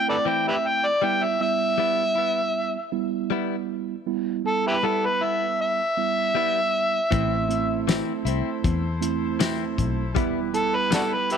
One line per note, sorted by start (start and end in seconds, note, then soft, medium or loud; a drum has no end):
0.00 0.89 A3 medium
0.00 0.89 C4 medium
0.00 0.89 E4 medium
0.09 0.16 A4 soft
0.09 0.17 B4 soft
0.09 0.29 D5 medium
0.26 0.50 E3 medium
0.26 0.50 C4 medium
0.26 0.51 E4 medium
0.26 0.45 G5 medium
0.48 0.56 G4 soft
0.48 0.55 B4 soft
0.48 0.68 E5 medium
0.67 0.88 G5 medium
0.86 1.05 D5 medium
1.02 1.26 G3 medium
1.02 1.36 G3 medium
1.02 1.26 B3 medium
1.02 1.37 B3 medium
1.02 1.37 E4 medium
1.02 1.27 E4 medium
1.02 1.25 G5 medium
1.23 1.40 E5 medium
1.40 2.76 G3 medium
1.40 2.76 B3 medium
1.40 2.76 E4 medium
1.40 2.90 E5 loud
1.78 2.02 G3 medium
1.78 2.03 B3 medium
1.78 2.03 E4 medium
2.15 2.41 B3 soft
2.15 2.40 E4 soft
2.92 3.94 G3 medium
2.92 3.94 B3 medium
2.92 3.94 E4 medium
3.30 3.54 G3 medium
3.30 3.55 B3 medium
3.30 3.55 E4 medium
4.07 4.41 G3 medium
4.07 4.41 B3 medium
4.07 4.41 E4 medium
4.44 5.80 G3 medium
4.44 5.80 B3 medium
4.44 5.80 E4 medium
4.44 4.65 A4 medium
4.67 4.75 E4 medium
4.67 4.76 G4 medium
4.67 4.87 B4 medium
4.83 5.07 G3 medium
4.83 5.07 B3 medium
4.83 5.08 E4 medium
4.83 5.07 A4 medium
5.06 5.24 B4 medium
5.21 5.46 B3 soft
5.21 5.45 E4 soft
5.21 5.59 E5 medium
5.61 7.85 E5 loud
5.97 6.99 G3 medium
5.97 6.99 B3 medium
5.97 6.99 E4 medium
6.35 6.59 G3 medium
6.35 6.60 B3 medium
6.35 6.60 E4 medium
7.11 8.01 A1 medium
7.11 7.35 E3 medium
7.11 7.45 A3 medium
7.11 7.45 C4 medium
7.11 7.35 C4 medium
7.11 7.45 E4 medium
7.11 7.36 E4 medium
7.11 11.38 E4 medium
7.11 10.13 A4 medium
7.11 10.13 C5 medium
7.11 kick loud
7.11 closed hi-hat medium
7.49 8.84 A3 medium
7.49 8.84 C4 medium
7.49 8.84 E4 medium
7.49 closed hi-hat medium
7.88 8.11 E3 medium
7.88 8.12 C4 medium
7.88 8.12 E4 medium
7.88 snare loud
7.88 closed hi-hat medium
7.88 tambourine medium
8.25 8.41 C2 medium
8.25 8.50 C4 soft
8.25 8.49 E4 medium
8.25 closed hi-hat soft
8.64 9.80 E2 medium
8.64 kick medium
8.64 closed hi-hat medium
9.01 10.03 A3 medium
9.01 10.03 C4 medium
9.01 10.03 E4 medium
9.01 closed hi-hat medium
9.40 9.63 E3 medium
9.40 9.64 C4 medium
9.40 9.64 E4 medium
9.40 snare loud
9.40 closed hi-hat medium
9.40 tambourine loud
9.78 10.16 B1 medium
9.78 kick medium
9.78 closed hi-hat medium
10.15 11.34 E1 medium
10.15 10.39 G3 medium
10.15 10.49 G3 medium
10.15 10.49 B3 medium
10.15 10.39 B3 medium
10.15 10.49 E4 medium
10.15 10.40 E4 medium
10.15 11.38 G4 medium
10.15 11.38 B4 medium
10.15 kick loud
10.15 closed hi-hat medium
10.53 11.38 G3 medium
10.53 11.38 B3 medium
10.53 11.38 E4 medium
10.53 10.77 A4 medium
10.53 closed hi-hat medium
10.75 10.91 B4 medium
10.91 11.15 G3 medium
10.91 11.15 B3 medium
10.91 11.00 D4 medium
10.91 11.16 E4 medium
10.91 11.02 F#4 medium
10.91 11.15 A4 medium
10.91 snare loud
10.91 closed hi-hat medium
10.91 tambourine loud
11.14 11.29 B4 medium
11.30 11.38 G4 medium
11.30 11.38 B4 medium
11.30 11.38 E5 medium
11.30 closed hi-hat medium